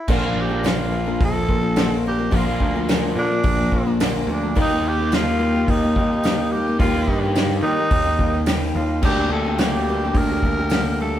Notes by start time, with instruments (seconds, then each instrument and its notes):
Already playing: tenor saxophone E4
0.08 picked electric bass A#1, steel-string acoustic guitar A#2 D3 F3 A#3 D4 A#4, grand piano A#3 D4 F4, tenor saxophone F4, overdriven electric guitar F4, kick, crash
0.22 steel-string acoustic guitar F3 A#3 D4 A#4
0.36 picked electric bass A#1
0.41 tenor saxophone G4
0.49 steel-string acoustic guitar F3 A#3 D4 A#4
0.63 steel-string acoustic guitar A#2 D3 F3 A#3 D4 A#4, tenor saxophone F4, snare, open hi-hat, tambourine
0.91 steel-string acoustic guitar F3 A#3 D4 A#4
1.06 steel-string acoustic guitar F3 A#3 D4 A#4
1.20 picked electric bass A#1, kick, open hi-hat
1.25 tenor saxophone A4
1.32 steel-string acoustic guitar F3 A#3 D4 A#4
1.48 picked electric bass A#1, steel-string acoustic guitar F3 A#3 D4 A#4, kick
1.60 steel-string acoustic guitar F3 A#3 D4 A#4
1.76 steel-string acoustic guitar A#2 D3 F3 A#3 D4 A#4, snare, open hi-hat, tambourine
2.04 steel-string acoustic guitar F3 A#3 D4 A#4, tenor saxophone G4
2.18 steel-string acoustic guitar F3 A#3 D4 A#4
2.31 picked electric bass A#1, steel-string acoustic guitar A#2 D3 F3 A#3 D4 A#4, grand piano D4 F4 A#4, overdriven electric guitar F4, kick, open hi-hat
2.35 tenor saxophone F4
2.47 steel-string acoustic guitar F3 A#3 D4 A#4
2.60 picked electric bass D2, kick
2.75 steel-string acoustic guitar F3 A#3 D4 A#4
2.88 steel-string acoustic guitar A#2 D3 F3 A#3 D4 A#4, snare, open hi-hat, tambourine
3.16 picked electric bass A#2, steel-string acoustic guitar F3 A#3 D4 A#4, tenor saxophone D4
3.30 steel-string acoustic guitar F3 A#3 D4 A#4
3.43 picked electric bass A#1, kick, open hi-hat
3.59 steel-string acoustic guitar F3 A#3 D4 A#4
3.71 picked electric bass A#1, steel-string acoustic guitar F3 A#3 D4 A#4, kick
3.85 steel-string acoustic guitar F3 A#3 D4 A#4
4.00 steel-string acoustic guitar A#2 D3 F3 A#3 D4 A#4, snare, open hi-hat, tambourine
4.27 picked electric bass D2, steel-string acoustic guitar F3 A#3 D4 A#4
4.33 tenor saxophone D4
4.42 steel-string acoustic guitar F3 A#3 D4 A#4
4.55 picked electric bass D#2, steel-string acoustic guitar D#3 G3 A#3 D#4 G4, grand piano D#4 G4 A#4, kick, open hi-hat
4.61 tenor saxophone D#4
4.70 steel-string acoustic guitar A#3 D#4 G4
4.82 picked electric bass D#2
4.88 tenor saxophone G4
4.99 steel-string acoustic guitar A#3 D#4 G4
5.12 steel-string acoustic guitar D#3 G3 A#3 D#4 G4, tenor saxophone F4, snare, open hi-hat, tambourine
5.39 steel-string acoustic guitar G3 A#3 D#4 G4
5.54 steel-string acoustic guitar A#3 D#4 G4
5.67 picked electric bass D#2, tenor saxophone D#4, kick, open hi-hat
5.83 steel-string acoustic guitar A#3 D#4 G4
5.96 picked electric bass D#2, steel-string acoustic guitar G3 A#3 D#4 G4, kick
6.12 steel-string acoustic guitar A#3 D#4 G4
6.24 steel-string acoustic guitar D#3 G3 A#3 D#4 G4, snare, open hi-hat, tambourine
6.52 steel-string acoustic guitar G3 A#3 D#4 G4, tenor saxophone G4
6.67 steel-string acoustic guitar A#3 D#4 G4
6.79 picked electric bass D#2, steel-string acoustic guitar D#3 G3 A#3 D#4 G4, grand piano D#4 G4 A#4, tenor saxophone F4, kick, open hi-hat
6.95 steel-string acoustic guitar A#3 D#4 G4
7.08 picked electric bass G2, kick
7.24 steel-string acoustic guitar A#3 D#4 G4
7.35 steel-string acoustic guitar D#3 G3 A#3 D#4 G4, snare, open hi-hat, tambourine
7.63 picked electric bass D#3, steel-string acoustic guitar G3 A#3 D#4 G4, tenor saxophone D#4
7.79 steel-string acoustic guitar A#3 D#4 G4
7.91 picked electric bass D#2, kick, open hi-hat
8.06 steel-string acoustic guitar A#3 D#4 G4
8.19 picked electric bass D#2, steel-string acoustic guitar G3 A#3 D#4 G4, kick
8.33 steel-string acoustic guitar A#3 D#4 G4
8.46 steel-string acoustic guitar D#3 G3 A#3 D#4 G4, snare, open hi-hat, tambourine
8.75 picked electric bass D#2, steel-string acoustic guitar G3 A#3 D#4 G4, tenor saxophone F4
9.03 picked electric bass D2, steel-string acoustic guitar D3 G3 A#3 D4 G4, grand piano D4 G4 A#4, tenor saxophone G4, kick, crash
9.18 steel-string acoustic guitar A#3 D4 G4
9.30 picked electric bass D2, tenor saxophone A4
9.45 steel-string acoustic guitar A#3 D4 G4
9.58 steel-string acoustic guitar D3 G3 A#3 D4 G4, tenor saxophone G4, snare, open hi-hat, tambourine
9.89 steel-string acoustic guitar G3 A#3 D4 G4
10.04 steel-string acoustic guitar A#3 D4 G4
10.14 picked electric bass D2, tenor saxophone A#4, kick, open hi-hat
10.31 steel-string acoustic guitar A#3 D4 G4
10.43 picked electric bass D2, steel-string acoustic guitar G3 A#3 D4 G4, kick
10.59 steel-string acoustic guitar A#3 D4 G4
10.70 steel-string acoustic guitar D3 G3 A#3 D4 G4, snare, open hi-hat, tambourine
11.00 steel-string acoustic guitar G3 A#3 D4 G4, tenor saxophone A4